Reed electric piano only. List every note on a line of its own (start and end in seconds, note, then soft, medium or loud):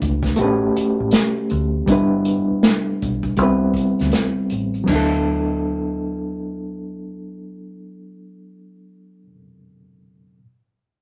0.00 0.33 A3 medium
0.00 0.34 D4 medium
0.00 0.35 E4 medium
0.00 0.36 F#4 medium
0.00 0.40 B4 medium
0.36 1.84 A3 medium
0.36 0.46 B3 soft
0.36 1.85 F#4 medium
0.36 1.86 G4 medium
0.41 1.88 C#4 medium
0.41 1.86 B4 medium
1.86 3.34 G3 medium
1.86 3.35 B3 medium
1.86 3.35 D4 medium
1.91 3.36 E4 medium
1.91 3.37 B4 medium
3.37 4.84 G3 medium
3.37 4.85 B3 medium
3.37 4.86 C4 medium
3.42 4.87 E4 medium
3.42 4.87 B4 medium
4.84 9.22 F#3 medium
4.84 9.24 B3 medium
4.89 9.27 D4 medium
4.89 9.30 E4 medium
4.95 9.33 A4 medium